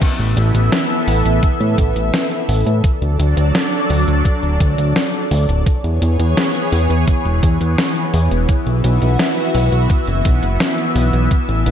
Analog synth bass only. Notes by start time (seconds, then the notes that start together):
0.19 A1
0.37 A1
0.55 A1
1.07 A1
1.25 A1
1.60 A2
1.78 A1
1.96 A1
2.49 A1
2.66 A2
3.02 D2
3.19 D2
3.37 D2
3.90 D2
4.08 D2
4.43 D1
4.60 D2
4.78 D2
5.31 D2
5.49 D1
5.84 E2
6.02 E2
6.19 E2
6.72 E2
6.90 E2
7.25 E1
7.43 E2
7.61 E2
8.14 E2
8.31 E1
8.66 B1
8.84 B1
9.02 B1
9.55 B1
9.72 B1
10.07 F#1
10.25 B1
10.43 F#1
10.95 B1
11.13 B1
11.49 A1
11.66 A1